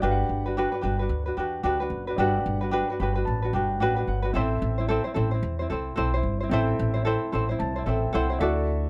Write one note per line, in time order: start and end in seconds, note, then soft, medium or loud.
0.00 0.25 G1 medium
0.00 2.14 D4 medium
0.00 0.46 D4 medium
0.00 0.46 F#4 medium
0.00 0.45 G4 medium
0.00 2.15 G4 medium
0.00 2.15 B4 medium
0.00 0.44 B4 medium
0.05 0.12 F5 medium
0.11 2.19 F#5 medium
0.29 0.65 G1 medium
0.46 0.57 D4 soft
0.46 0.57 F#4 soft
0.46 0.57 B4 soft
0.57 0.74 D4 medium
0.57 0.73 F#4 medium
0.57 0.73 G4 medium
0.57 0.71 B4 medium
0.72 0.81 D4 soft
0.72 0.82 F#4 soft
0.72 0.83 B4 soft
0.81 1.06 G1 medium
0.81 0.99 D4 medium
0.81 1.00 F#4 medium
0.81 0.99 G4 medium
0.81 0.98 B4 medium
0.99 1.27 D4 soft
0.99 1.26 F#4 soft
0.99 1.25 B4 soft
1.09 1.32 D2 medium
1.26 1.36 D4 soft
1.26 1.38 F#4 soft
1.26 1.37 B4 soft
1.37 1.60 E2 medium
1.37 1.63 D4 medium
1.37 1.64 F#4 medium
1.37 1.62 G4 medium
1.37 1.64 B4 medium
1.63 1.86 D2 medium
1.63 1.81 D4 medium
1.63 1.80 F#4 medium
1.63 1.80 G4 medium
1.63 1.79 B4 medium
1.80 2.09 D4 soft
1.80 2.07 F#4 medium
1.80 2.06 B4 soft
1.90 2.13 F#1 medium
2.07 2.18 D4 soft
2.07 2.19 F#4 soft
2.07 2.19 B4 medium
2.16 2.41 G1 medium
2.16 4.30 D4 medium
2.16 2.62 D4 medium
2.16 2.61 F#4 medium
2.16 4.31 G4 medium
2.16 2.62 G4 medium
2.16 4.32 B4 medium
2.20 2.60 B4 medium
2.20 3.79 F#5 medium
2.46 2.81 G1 medium
2.61 2.71 D4 soft
2.61 2.72 F#4 soft
2.61 2.72 B4 medium
2.71 2.89 D4 medium
2.71 2.89 F#4 medium
2.71 2.88 G4 medium
2.71 2.89 B4 medium
2.90 3.00 D4 soft
2.90 3.01 F#4 soft
2.90 3.00 B4 soft
3.00 3.22 G1 medium
3.00 3.17 D4 medium
3.00 3.16 F#4 medium
3.00 3.17 G4 soft
3.00 3.14 B4 medium
3.00 3.25 B5 medium
3.15 3.44 D4 soft
3.15 3.43 F#4 soft
3.15 3.41 B4 medium
3.25 3.49 A1 medium
3.25 3.51 A5 medium
3.42 3.53 D4 soft
3.42 3.54 F#4 soft
3.42 3.54 B4 soft
3.53 3.80 G1 medium
3.53 3.80 D4 medium
3.53 3.81 F#4 medium
3.53 3.79 G4 medium
3.53 3.81 B4 medium
3.53 3.79 G5 medium
3.80 4.03 A1 medium
3.80 3.97 D4 medium
3.80 3.96 F#4 medium
3.80 3.97 G4 medium
3.80 3.95 B4 medium
3.80 4.06 F#5 medium
3.96 4.24 D4 soft
3.96 4.23 F#4 medium
3.96 4.21 B4 medium
4.07 4.30 G1 medium
4.07 4.33 F#5 medium
4.22 4.34 D4 soft
4.22 4.35 F#4 soft
4.22 4.33 B4 medium
4.33 4.57 A1 medium
4.33 6.47 C4 medium
4.33 4.78 C4 medium
4.33 6.47 E4 medium
4.33 4.78 E4 medium
4.33 4.77 A4 medium
4.33 6.48 A4 medium
4.33 4.77 C5 medium
4.33 6.48 E5 medium
4.62 4.98 A1 medium
4.78 4.88 C4 soft
4.78 4.89 E4 soft
4.78 4.88 C5 medium
4.88 5.06 C4 medium
4.88 5.04 E4 medium
4.88 5.04 A4 medium
4.88 5.03 C5 medium
5.04 5.14 C4 soft
5.04 5.15 E4 soft
5.04 5.14 C5 medium
5.14 5.38 A1 medium
5.14 5.32 C4 medium
5.14 5.32 E4 medium
5.14 5.31 A4 medium
5.14 5.30 C5 medium
5.31 5.61 C4 soft
5.31 5.60 E4 soft
5.31 5.58 C5 medium
5.43 5.65 E2 medium
5.59 5.69 C4 soft
5.59 5.70 E4 soft
5.59 5.69 C5 soft
5.70 5.92 C2 medium
5.70 5.96 C4 medium
5.70 5.96 E4 medium
5.70 5.94 A4 medium
5.70 5.96 C5 medium
5.96 6.20 B1 medium
5.96 6.14 C4 medium
5.96 6.14 E4 medium
5.96 6.13 A4 medium
5.96 6.13 C5 medium
6.14 6.42 C4 soft
6.14 6.41 E4 medium
6.14 6.39 C5 medium
6.23 6.46 G1 medium
6.40 6.51 C4 soft
6.40 6.51 E4 soft
6.40 6.51 C5 medium
6.49 6.74 A1 loud
6.49 7.83 C4 medium
6.49 6.95 C4 medium
6.49 7.84 E4 medium
6.49 6.94 E4 medium
6.49 6.93 A4 medium
6.49 7.84 A4 medium
6.49 6.93 C5 medium
6.49 7.85 E5 medium
6.79 7.15 A1 medium
6.94 7.04 C4 soft
6.94 7.05 E4 soft
6.94 7.04 C5 medium
7.05 7.32 C4 medium
7.05 7.33 E4 medium
7.05 7.31 A4 medium
7.05 7.33 C5 medium
7.32 7.55 A1 medium
7.32 7.49 C4 medium
7.32 7.50 E4 medium
7.32 7.49 A4 medium
7.32 7.48 C5 medium
7.32 7.58 C6 medium
7.49 7.77 C4 soft
7.49 7.76 E4 medium
7.49 7.75 C5 medium
7.59 7.82 C2 medium
7.59 7.84 A5 medium
7.76 7.86 C4 soft
7.76 7.86 E4 soft
7.76 7.85 C5 soft
7.86 8.09 A1 medium
7.86 8.40 C4 soft
7.86 8.13 C4 medium
7.86 8.41 E4 soft
7.86 8.13 E4 medium
7.86 8.11 A4 medium
7.86 8.40 A4 soft
7.86 8.14 C5 medium
7.86 8.39 E5 medium
7.86 8.12 G5 medium
8.13 8.36 C2 medium
8.13 8.30 C4 medium
8.13 8.30 E4 medium
8.13 8.29 A4 medium
8.13 8.29 C5 loud
8.13 8.39 F#5 medium
8.30 8.41 C4 soft
8.30 8.40 E4 medium
8.30 8.40 C5 medium
8.39 8.85 D2 loud
8.39 8.90 D4 medium
8.39 8.90 E4 medium
8.39 8.90 F#4 medium
8.39 8.90 A4 medium
8.39 8.90 D5 medium
8.39 8.42 E5 medium
8.43 8.90 E5 medium